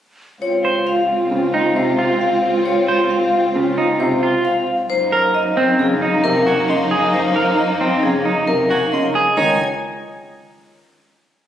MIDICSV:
0, 0, Header, 1, 8, 480
1, 0, Start_track
1, 0, Key_signature, -5, "major"
1, 0, Tempo, 447761
1, 449, Time_signature, 5, 2, 24, 8
1, 12299, End_track
2, 0, Start_track
2, 0, Title_t, "Violin"
2, 0, Program_c, 0, 40
2, 6932, Note_on_c, 0, 80, 71
2, 7111, Note_off_c, 0, 80, 0
2, 7173, Note_on_c, 0, 84, 64
2, 7351, Note_off_c, 0, 84, 0
2, 9329, Note_on_c, 0, 80, 63
2, 9509, Note_off_c, 0, 80, 0
2, 9569, Note_on_c, 0, 84, 59
2, 9749, Note_off_c, 0, 84, 0
2, 10049, Note_on_c, 0, 80, 90
2, 10273, Note_off_c, 0, 80, 0
2, 12299, End_track
3, 0, Start_track
3, 0, Title_t, "Vibraphone"
3, 0, Program_c, 1, 11
3, 447, Note_on_c, 1, 73, 61
3, 761, Note_off_c, 1, 73, 0
3, 930, Note_on_c, 1, 77, 59
3, 1242, Note_off_c, 1, 77, 0
3, 1890, Note_on_c, 1, 72, 62
3, 2202, Note_off_c, 1, 72, 0
3, 2369, Note_on_c, 1, 77, 59
3, 2681, Note_off_c, 1, 77, 0
3, 2846, Note_on_c, 1, 73, 75
3, 3160, Note_off_c, 1, 73, 0
3, 3329, Note_on_c, 1, 77, 64
3, 3641, Note_off_c, 1, 77, 0
3, 4287, Note_on_c, 1, 72, 79
3, 4601, Note_off_c, 1, 72, 0
3, 4768, Note_on_c, 1, 77, 68
3, 5081, Note_off_c, 1, 77, 0
3, 5249, Note_on_c, 1, 72, 88
3, 5562, Note_off_c, 1, 72, 0
3, 5730, Note_on_c, 1, 75, 72
3, 6042, Note_off_c, 1, 75, 0
3, 6210, Note_on_c, 1, 68, 61
3, 6522, Note_off_c, 1, 68, 0
3, 6686, Note_on_c, 1, 70, 86
3, 7000, Note_off_c, 1, 70, 0
3, 7165, Note_on_c, 1, 75, 65
3, 7480, Note_off_c, 1, 75, 0
3, 7648, Note_on_c, 1, 72, 69
3, 7961, Note_off_c, 1, 72, 0
3, 8127, Note_on_c, 1, 75, 58
3, 8441, Note_off_c, 1, 75, 0
3, 8607, Note_on_c, 1, 68, 56
3, 8921, Note_off_c, 1, 68, 0
3, 9085, Note_on_c, 1, 70, 73
3, 9400, Note_off_c, 1, 70, 0
3, 9561, Note_on_c, 1, 75, 54
3, 9878, Note_off_c, 1, 75, 0
3, 10047, Note_on_c, 1, 73, 80
3, 10271, Note_off_c, 1, 73, 0
3, 12299, End_track
4, 0, Start_track
4, 0, Title_t, "Clean electric guitar"
4, 0, Program_c, 2, 27
4, 693, Note_on_c, 2, 72, 51
4, 1003, Note_off_c, 2, 72, 0
4, 1649, Note_on_c, 2, 63, 57
4, 1962, Note_off_c, 2, 63, 0
4, 2129, Note_on_c, 2, 65, 61
4, 2441, Note_off_c, 2, 65, 0
4, 3092, Note_on_c, 2, 72, 70
4, 3402, Note_off_c, 2, 72, 0
4, 4049, Note_on_c, 2, 63, 64
4, 4362, Note_off_c, 2, 63, 0
4, 4533, Note_on_c, 2, 65, 67
4, 4843, Note_off_c, 2, 65, 0
4, 5493, Note_on_c, 2, 70, 70
4, 5803, Note_off_c, 2, 70, 0
4, 5971, Note_on_c, 2, 60, 90
4, 6282, Note_off_c, 2, 60, 0
4, 6454, Note_on_c, 2, 63, 65
4, 6763, Note_off_c, 2, 63, 0
4, 6932, Note_on_c, 2, 66, 62
4, 7242, Note_off_c, 2, 66, 0
4, 7409, Note_on_c, 2, 68, 77
4, 7721, Note_off_c, 2, 68, 0
4, 7887, Note_on_c, 2, 70, 62
4, 8201, Note_off_c, 2, 70, 0
4, 8369, Note_on_c, 2, 60, 83
4, 8681, Note_off_c, 2, 60, 0
4, 8848, Note_on_c, 2, 63, 58
4, 9161, Note_off_c, 2, 63, 0
4, 9332, Note_on_c, 2, 66, 61
4, 9642, Note_off_c, 2, 66, 0
4, 9811, Note_on_c, 2, 68, 80
4, 10049, Note_on_c, 2, 63, 84
4, 10122, Note_off_c, 2, 68, 0
4, 10273, Note_off_c, 2, 63, 0
4, 12299, End_track
5, 0, Start_track
5, 0, Title_t, "Alto flute"
5, 0, Program_c, 3, 73
5, 447, Note_on_c, 3, 65, 52
5, 4965, Note_off_c, 3, 65, 0
5, 5247, Note_on_c, 3, 63, 74
5, 9765, Note_off_c, 3, 63, 0
5, 12299, End_track
6, 0, Start_track
6, 0, Title_t, "Violin section"
6, 0, Program_c, 4, 48
6, 452, Note_on_c, 4, 60, 64
6, 458, Note_on_c, 4, 65, 63
6, 4968, Note_off_c, 4, 60, 0
6, 4971, Note_off_c, 4, 65, 0
6, 5245, Note_on_c, 4, 63, 80
6, 5247, Note_on_c, 4, 58, 81
6, 9764, Note_off_c, 4, 63, 0
6, 9766, Note_off_c, 4, 58, 0
6, 12299, End_track
7, 0, Start_track
7, 0, Title_t, "Grand piano"
7, 0, Program_c, 5, 0
7, 1404, Note_on_c, 5, 49, 59
7, 1719, Note_off_c, 5, 49, 0
7, 1885, Note_on_c, 5, 48, 68
7, 2200, Note_off_c, 5, 48, 0
7, 3808, Note_on_c, 5, 49, 78
7, 4121, Note_off_c, 5, 49, 0
7, 4286, Note_on_c, 5, 48, 81
7, 4600, Note_off_c, 5, 48, 0
7, 6207, Note_on_c, 5, 49, 76
7, 6521, Note_off_c, 5, 49, 0
7, 6695, Note_on_c, 5, 48, 81
7, 7004, Note_off_c, 5, 48, 0
7, 7173, Note_on_c, 5, 49, 64
7, 7483, Note_off_c, 5, 49, 0
7, 8608, Note_on_c, 5, 49, 65
7, 8921, Note_off_c, 5, 49, 0
7, 9087, Note_on_c, 5, 48, 64
7, 9401, Note_off_c, 5, 48, 0
7, 9571, Note_on_c, 5, 49, 54
7, 9882, Note_off_c, 5, 49, 0
7, 10047, Note_on_c, 5, 51, 76
7, 10271, Note_off_c, 5, 51, 0
7, 12299, End_track
8, 0, Start_track
8, 0, Title_t, "Cello"
8, 0, Program_c, 6, 42
8, 451, Note_on_c, 6, 37, 54
8, 5111, Note_off_c, 6, 37, 0
8, 5246, Note_on_c, 6, 42, 78
8, 9909, Note_off_c, 6, 42, 0
8, 10049, Note_on_c, 6, 37, 70
8, 10273, Note_off_c, 6, 37, 0
8, 12299, End_track
0, 0, End_of_file